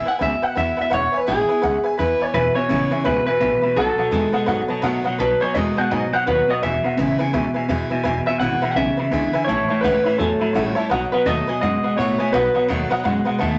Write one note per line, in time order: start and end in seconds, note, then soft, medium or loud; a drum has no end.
0.00 0.19 E2 medium
0.05 0.21 E4 medium
0.05 0.14 B4 medium
0.05 0.15 E5 medium
0.05 0.13 F#5 loud
0.05 0.15 G#5 medium
0.05 muted upright bass stroke medium
0.10 0.22 B3 soft
0.19 0.34 C#2 loud
0.19 0.90 B2 medium
0.19 0.33 B4 medium
0.19 0.34 E5 medium
0.19 0.43 E5 loud
0.19 0.34 G#5 loud
0.42 0.51 B4 medium
0.42 0.51 E5 medium
0.42 0.57 F#5 loud
0.42 0.51 F#5 medium
0.42 muted upright bass stroke medium
0.55 0.70 E2 medium
0.55 0.77 E3 medium
0.55 0.78 G#3 medium
0.55 0.78 B3 medium
0.55 0.78 E4 medium
0.55 0.69 B4 medium
0.55 0.69 E5 medium
0.55 0.77 E5 loud
0.55 0.70 F#5 medium
0.77 0.92 E4 soft
0.77 0.86 B4 medium
0.77 0.86 E5 medium
0.77 0.86 F#5 medium
0.77 muted upright bass stroke medium
0.81 0.93 B3 soft
0.81 0.93 E5 medium
0.90 1.05 E1 loud
0.90 1.61 E2 loud
0.90 1.04 B4 medium
0.90 1.17 C#5 loud
0.90 1.05 E5 medium
0.90 1.05 F#5 loud
1.12 1.21 B4 medium
1.12 1.22 E5 medium
1.12 1.22 G#5 medium
1.12 muted upright bass stroke medium
1.17 1.30 B4 medium
1.26 1.42 A1 loud
1.26 1.48 E3 medium
1.26 1.49 G#3 medium
1.26 1.49 B3 medium
1.26 1.48 E4 medium
1.26 1.95 G#4 medium
1.26 1.40 B4 medium
1.26 1.40 E5 medium
1.26 1.41 G#5 medium
1.49 1.64 B3 soft
1.49 1.63 E4 medium
1.49 1.57 B4 medium
1.49 1.58 E5 medium
1.49 1.58 G#5 medium
1.49 muted upright bass stroke medium
1.62 1.77 C#2 medium
1.62 1.76 B4 loud
1.62 1.76 E5 medium
1.62 1.76 F#5 loud
1.84 1.93 B4 medium
1.84 1.93 E5 medium
1.84 1.94 G#5 loud
1.97 2.13 E2 medium
1.97 2.33 E3 medium
1.97 2.34 G#3 medium
1.97 2.34 B3 medium
1.97 2.34 E4 medium
1.97 2.11 B4 medium
1.97 2.22 B4 medium
1.97 2.12 E5 medium
1.97 2.12 G#5 medium
2.19 2.28 B4 medium
2.19 2.34 C#5 medium
2.19 2.29 E5 medium
2.19 2.29 G#5 medium
2.19 muted upright bass stroke medium
2.34 2.48 E1 medium
2.34 2.54 E2 medium
2.34 3.03 E2 medium
2.34 2.54 B2 medium
2.34 2.47 B4 loud
2.34 2.55 B4 loud
2.34 2.48 E5 medium
2.34 2.48 G#5 loud
2.55 2.68 E2 medium
2.55 2.69 B2 medium
2.55 2.64 B4 medium
2.55 3.05 C#5 loud
2.55 2.64 E5 medium
2.55 2.65 G#5 medium
2.55 muted upright bass stroke medium
2.69 2.84 A1 medium
2.69 2.89 E2 medium
2.69 2.90 C#3 loud
2.69 2.91 E3 medium
2.69 2.91 G#3 medium
2.69 2.92 B3 medium
2.69 2.90 E4 medium
2.69 2.83 B4 medium
2.69 2.83 E5 medium
2.69 2.84 G#5 medium
2.91 3.04 E2 medium
2.91 3.04 C#3 medium
2.91 3.06 B3 soft
2.91 3.05 E4 medium
2.91 3.00 B4 medium
2.91 3.00 E5 medium
2.91 3.00 G#5 medium
2.91 muted upright bass stroke medium
3.04 3.20 C#2 medium
3.04 3.25 E2 medium
3.04 3.40 G#2 medium
3.04 3.25 B2 loud
3.04 3.18 B4 loud
3.04 3.25 B4 medium
3.04 3.19 E5 medium
3.04 3.19 G#5 medium
3.26 3.39 E2 medium
3.26 3.40 B2 medium
3.26 3.35 B4 medium
3.26 3.78 B4 loud
3.26 3.35 E5 medium
3.26 3.36 G#5 medium
3.40 3.55 A1 medium
3.40 3.61 E2 medium
3.40 3.75 A2 medium
3.40 3.61 B2 medium
3.40 3.54 B4 medium
3.40 3.54 E5 medium
3.40 3.55 G#5 medium
3.62 3.75 E2 medium
3.62 3.75 B2 medium
3.62 3.71 B4 medium
3.62 3.71 E5 medium
3.62 3.71 B5 medium
3.62 muted upright bass stroke medium
3.76 3.90 B1 medium
3.76 3.96 B2 medium
3.76 4.45 B2 medium
3.76 3.97 F#3 medium
3.76 5.02 A4 loud
3.76 3.90 B4 loud
3.76 3.90 D#5 loud
3.76 3.91 F#5 loud
3.98 4.11 B2 medium
3.98 4.11 F#3 medium
3.98 4.07 B4 medium
3.98 4.07 D#5 medium
3.98 4.07 F#5 medium
3.98 muted upright bass stroke medium
4.11 4.25 E2 medium
4.11 4.32 B2 medium
4.11 4.33 D#3 medium
4.11 4.32 G#3 medium
4.11 4.33 A3 medium
4.11 4.34 B3 medium
4.11 4.33 F#4 loud
4.11 4.25 B4 medium
4.11 4.25 D#5 medium
4.11 4.26 G#5 medium
4.32 4.47 B2 medium
4.32 4.47 G#3 medium
4.32 4.48 B3 medium
4.32 4.47 F#4 medium
4.32 4.42 B4 medium
4.32 4.42 D#5 medium
4.32 4.42 F#5 loud
4.32 muted upright bass stroke medium
4.46 5.17 F#2 medium
4.46 4.61 G#2 loud
4.46 4.68 B2 medium
4.46 4.68 F#3 loud
4.46 4.60 B4 loud
4.46 4.61 D#5 loud
4.46 4.61 F#5 loud
4.68 4.82 B2 medium
4.68 4.82 F#3 medium
4.68 4.77 B4 medium
4.68 4.78 D#5 medium
4.68 4.78 A5 loud
4.68 muted upright bass stroke medium
4.82 4.97 B2 medium
4.82 5.04 B2 medium
4.82 5.04 D#3 medium
4.82 5.04 F#3 medium
4.82 5.05 A3 medium
4.82 5.05 B3 medium
4.82 5.04 F#4 loud
4.82 4.96 B4 medium
4.82 4.96 D#5 medium
4.82 4.97 F#5 loud
5.04 5.18 B2 medium
5.04 5.19 F#3 medium
5.04 5.20 B3 soft
5.04 5.18 F#4 soft
5.04 5.13 B4 medium
5.04 5.13 D#5 medium
5.04 5.14 F#5 loud
5.04 muted upright bass stroke medium
5.18 5.33 B1 medium
5.18 5.88 B2 loud
5.18 5.40 B2 medium
5.18 5.40 F#3 medium
5.18 5.32 B4 loud
5.18 5.42 B4 medium
5.18 5.33 D#5 medium
5.18 5.33 A5 loud
5.40 5.54 B2 medium
5.40 5.54 F#3 medium
5.40 5.49 B4 medium
5.40 5.54 C#5 medium
5.40 5.50 D#5 medium
5.40 5.50 G#5 medium
5.40 muted upright bass stroke medium
5.54 5.69 E2 loud
5.54 5.75 B2 medium
5.54 5.76 D#3 medium
5.54 5.76 G#3 medium
5.54 5.76 A3 medium
5.54 5.77 B3 medium
5.54 5.75 F#4 medium
5.54 5.68 B4 medium
5.54 5.78 D#5 medium
5.54 5.68 D#5 medium
5.54 5.69 G#5 medium
5.77 5.89 B2 medium
5.77 5.90 G#3 medium
5.77 5.91 B3 medium
5.77 5.90 F#4 medium
5.77 5.85 B4 medium
5.77 5.85 D#5 medium
5.77 5.91 F#5 medium
5.77 5.86 A5 medium
5.90 6.25 G#2 medium
5.90 6.05 G#2 loud
5.90 6.10 B2 medium
5.90 6.11 F#3 loud
5.90 6.04 B4 medium
5.90 6.13 D#5 medium
5.90 6.04 D#5 medium
5.90 6.05 G#5 loud
6.13 6.25 B2 medium
6.13 6.25 F#3 medium
6.13 6.21 B4 medium
6.13 6.22 D#5 medium
6.13 6.27 F#5 loud
6.13 6.22 F#5 medium
6.13 muted upright bass stroke medium
6.26 6.41 D#2 medium
6.26 6.61 F#2 medium
6.26 6.46 B2 medium
6.26 6.47 F#3 medium
6.26 6.40 B4 medium
6.26 6.50 B4 medium
6.26 6.40 D#5 medium
6.26 6.41 F#5 medium
6.48 6.61 B2 medium
6.48 6.61 F#3 medium
6.48 6.57 B4 medium
6.48 6.57 D#5 medium
6.48 6.63 D#5 medium
6.48 6.58 F#5 medium
6.48 muted upright bass stroke medium
6.62 6.76 E1 medium
6.62 6.82 E2 medium
6.62 7.31 E2 loud
6.62 6.82 B2 medium
6.62 6.76 B4 loud
6.62 7.16 E5 loud
6.62 6.76 E5 medium
6.62 6.76 G#5 loud
6.84 6.96 E2 medium
6.84 6.96 B2 medium
6.84 6.92 B4 medium
6.84 6.93 E5 medium
6.84 6.93 F#5 medium
6.84 muted upright bass stroke medium
6.97 7.12 A1 medium
6.97 7.17 E2 medium
6.97 7.17 C#3 loud
6.97 7.19 E3 medium
6.97 7.19 G#3 medium
6.97 7.20 B3 loud
6.97 7.19 E4 medium
6.97 7.11 B4 medium
6.97 7.11 E5 medium
6.97 7.12 G#5 medium
7.19 7.32 E2 medium
7.19 7.32 C#3 medium
7.19 7.34 B3 medium
7.19 7.33 E4 medium
7.19 7.27 B4 loud
7.19 7.28 E5 medium
7.19 7.28 G#5 loud
7.19 muted upright bass stroke medium
7.33 7.47 C#2 loud
7.33 7.53 E2 medium
7.33 7.53 B2 medium
7.33 8.02 B2 loud
7.33 7.46 B4 loud
7.33 7.47 E5 loud
7.33 7.47 G#5 loud
7.54 7.68 E2 medium
7.54 7.68 B2 medium
7.54 7.63 B4 medium
7.54 7.63 E5 medium
7.54 7.64 G#5 medium
7.54 muted upright bass stroke medium
7.68 7.89 E2 medium
7.68 7.83 E2 medium
7.68 7.89 B2 medium
7.68 7.90 E3 medium
7.68 7.90 G#3 medium
7.68 7.91 B3 medium
7.68 7.90 E4 medium
7.68 7.82 B4 medium
7.68 7.82 E5 medium
7.68 7.83 G#5 medium
7.90 8.04 E2 medium
7.90 8.04 B2 medium
7.90 8.05 B3 soft
7.90 8.04 E4 soft
7.90 7.99 B4 medium
7.90 7.99 E5 medium
7.90 7.99 G#5 medium
7.90 muted upright bass stroke medium
8.03 8.21 E1 medium
8.03 8.74 E2 loud
8.03 8.25 E2 medium
8.03 8.25 B2 medium
8.03 8.17 B4 loud
8.03 8.18 E5 loud
8.03 8.18 G#5 loud
8.26 8.40 E2 medium
8.26 8.40 B2 medium
8.26 8.35 B4 medium
8.26 8.35 E5 medium
8.26 8.39 E5 loud
8.26 8.35 G#5 medium
8.26 muted upright bass stroke medium
8.40 8.57 G#1 medium
8.40 8.61 E2 medium
8.40 8.61 B2 medium
8.40 8.62 E3 medium
8.40 8.62 G#3 medium
8.40 8.62 B3 loud
8.40 8.61 E4 medium
8.40 8.53 B4 medium
8.40 8.54 E5 medium
8.40 8.70 F#5 medium
8.40 8.54 F#5 medium
8.62 8.75 E2 medium
8.62 8.75 B2 medium
8.62 8.77 B3 soft
8.62 8.76 E4 medium
8.62 8.70 B4 loud
8.62 8.71 E5 medium
8.62 8.71 B5 loud
8.62 muted upright bass stroke medium
8.71 8.76 F#5 medium
8.76 8.92 B1 loud
8.76 8.96 E2 medium
8.76 9.45 B2 medium
8.76 8.96 C#3 medium
8.76 8.89 B4 medium
8.76 8.90 E5 medium
8.76 9.44 E5 loud
8.76 8.90 G#5 medium
8.97 9.10 E2 medium
8.97 9.11 C#3 medium
8.97 9.06 B4 medium
8.97 9.06 E5 medium
8.97 9.07 B5 medium
8.97 muted upright bass stroke medium
9.11 9.28 C#2 medium
9.11 9.32 E2 medium
9.11 9.32 D3 medium
9.11 9.33 E3 medium
9.11 9.34 G#3 medium
9.11 9.34 B3 medium
9.11 9.34 E4 medium
9.11 9.25 B4 medium
9.11 9.25 E5 medium
9.11 9.26 G#5 medium
9.33 9.46 E2 medium
9.33 9.47 D3 medium
9.33 9.49 B3 soft
9.33 9.48 E4 medium
9.33 9.42 B4 loud
9.33 9.42 E5 loud
9.33 9.43 G#5 loud
9.33 muted upright bass stroke medium
9.45 9.64 A1 loud
9.45 9.67 A2 medium
9.45 9.68 E3 medium
9.45 9.83 C#5 loud
9.45 9.61 C#5 medium
9.45 9.61 E5 loud
9.49 10.17 A2 medium
9.49 9.61 A5 loud
9.68 9.82 A2 medium
9.68 9.83 E3 medium
9.68 9.77 C#5 medium
9.68 9.78 E5 medium
9.68 9.78 A5 medium
9.68 muted upright bass stroke medium
9.81 10.00 C#2 loud
9.81 10.04 A2 medium
9.81 10.05 E3 medium
9.81 10.04 E3 medium
9.81 10.05 A3 loud
9.81 10.05 C#4 medium
9.81 10.18 B4 medium
9.81 9.96 C#5 medium
9.81 9.97 E5 medium
9.81 9.97 F#5 medium
9.85 10.04 E4 loud
10.04 10.18 A2 medium
10.04 10.18 E3 medium
10.04 10.20 C#4 medium
10.04 10.19 E4 medium
10.04 10.13 C#5 medium
10.04 10.14 E5 loud
10.04 10.14 B5 loud
10.04 muted upright bass stroke medium
10.18 10.36 E2 loud
10.18 10.89 E2 medium
10.18 10.39 A2 medium
10.18 10.39 F#3 loud
10.18 10.73 A4 medium
10.18 10.32 C#5 medium
10.18 10.32 E5 medium
10.18 10.33 G#5 medium
10.39 10.53 A2 medium
10.39 10.54 F#3 medium
10.39 10.49 C#5 medium
10.39 10.49 E5 medium
10.39 10.50 B5 medium
10.39 muted upright bass stroke medium
10.53 10.71 A1 medium
10.53 10.75 A2 medium
10.53 10.76 E3 medium
10.53 10.75 G3 medium
10.53 10.76 A3 medium
10.53 10.77 C#4 medium
10.53 10.76 E4 medium
10.53 10.67 C#5 medium
10.53 10.68 E5 medium
10.53 10.68 F#5 medium
10.75 10.90 A2 medium
10.75 10.90 G3 medium
10.75 10.90 E4 medium
10.75 10.84 C#5 loud
10.75 10.85 E5 loud
10.75 10.85 A5 loud
10.79 10.91 C#4 soft
10.90 11.07 B1 medium
10.90 11.60 B2 medium
10.90 11.11 B2 medium
10.90 11.11 F#3 medium
10.90 11.03 B4 loud
10.90 11.04 D#5 loud
10.90 11.04 F#5 loud
11.12 11.25 B2 medium
11.12 11.26 F#3 medium
11.12 11.21 B4 medium
11.12 11.27 B4 medium
11.12 11.21 D#5 medium
11.12 11.22 F#5 medium
11.12 muted upright bass stroke medium
11.25 11.42 D#2 loud
11.25 11.46 B2 medium
11.25 11.47 D#3 medium
11.25 11.47 F#3 loud
11.25 11.47 A3 medium
11.25 11.48 B3 loud
11.25 11.47 F#4 medium
11.25 11.39 B4 medium
11.25 11.39 D#5 medium
11.25 11.60 D#5 loud
11.25 11.40 A5 medium
11.47 11.61 B2 medium
11.47 11.61 F#3 medium
11.47 11.62 B3 soft
11.47 11.62 F#4 medium
11.47 11.56 B4 loud
11.47 11.57 D#5 medium
11.47 11.57 G#5 loud
11.47 muted upright bass stroke medium
11.61 11.79 F#2 loud
11.61 12.31 F#2 medium
11.61 11.82 B2 medium
11.61 11.82 G#3 loud
11.61 11.75 B4 medium
11.61 11.97 D#5 loud
11.61 11.75 D#5 medium
11.61 11.76 F#5 medium
11.83 11.96 B2 medium
11.83 11.96 G#3 medium
11.83 11.92 B4 medium
11.83 11.92 D#5 medium
11.83 11.93 F#5 medium
11.83 muted upright bass stroke medium
11.97 12.15 A2 medium
11.97 12.18 B2 medium
11.97 12.19 D#3 medium
11.97 12.18 A3 medium
11.97 12.20 A3 medium
11.97 12.20 B3 medium
11.97 12.19 F#4 loud
11.97 12.11 B4 medium
11.97 12.35 C#5 medium
11.97 12.11 D#5 medium
11.97 12.11 F#5 medium
12.18 12.32 B2 medium
12.18 12.32 A3 medium
12.18 12.33 F#4 medium
12.18 12.27 B4 medium
12.18 12.28 D#5 medium
12.18 12.28 G#5 loud
12.22 12.34 B3 soft
12.32 12.50 B1 medium
12.32 12.53 B2 medium
12.32 13.02 B2 loud
12.32 12.54 F#3 medium
12.32 12.46 B4 loud
12.32 12.66 B4 medium
12.32 12.47 D#5 loud
12.32 12.47 F#5 loud
12.54 12.68 B2 medium
12.54 12.68 F#3 medium
12.54 12.63 B4 medium
12.54 12.64 D#5 medium
12.54 12.64 F#5 medium
12.68 12.86 D#2 loud
12.68 12.89 B2 medium
12.68 12.90 D#3 medium
12.68 12.89 F#3 medium
12.68 12.91 A3 medium
12.68 12.91 B3 loud
12.68 12.89 F#4 loud
12.68 12.82 B4 medium
12.68 12.82 D#5 medium
12.68 12.83 F#5 medium
12.90 13.03 B2 medium
12.90 13.04 F#3 medium
12.90 13.05 B3 medium
12.90 13.04 F#4 medium
12.90 12.99 B4 loud
12.90 13.00 D#5 loud
12.90 13.00 F#5 loud
12.90 muted upright bass stroke medium
13.04 13.59 F#2 medium
13.04 13.21 F#2 loud
13.04 13.25 B2 medium
13.04 13.25 G#3 loud
13.04 13.18 B4 medium
13.04 13.18 D#5 medium
13.04 13.18 F#5 loud
13.25 13.39 B2 medium
13.25 13.39 G#3 medium
13.25 13.34 B4 medium
13.25 13.35 D#5 medium
13.25 13.35 F#5 loud
13.25 muted upright bass stroke medium
13.38 13.57 D#2 medium
13.38 13.59 B2 medium
13.38 13.59 D#3 medium
13.38 13.59 A3 medium
13.38 13.59 B3 medium
13.38 13.59 F#4 loud
13.38 13.53 B4 medium
13.38 13.53 D#5 medium
13.38 13.50 F#5 medium
13.38 13.49 A5 medium
13.51 13.59 A5 medium